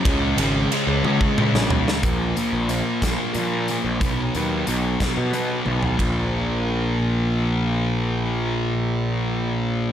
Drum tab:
RD |x-x-x-------|------------|------------|x-----------|
HH |------------|x-x-x-x-x-x-|x-x-x-x-x---|------------|
SD |---------o-o|------o-----|------o-----|------------|
T1 |------o-----|------------|----------o-|------------|
T2 |--------o---|------------|------------|------------|
FT |----------o-|------------|-----------o|------------|
BD |o------o----|o-----o-----|o-----o-----|o-----------|

RD |------------|
HH |------------|
SD |------------|
T1 |------------|
T2 |------------|
FT |------------|
BD |------------|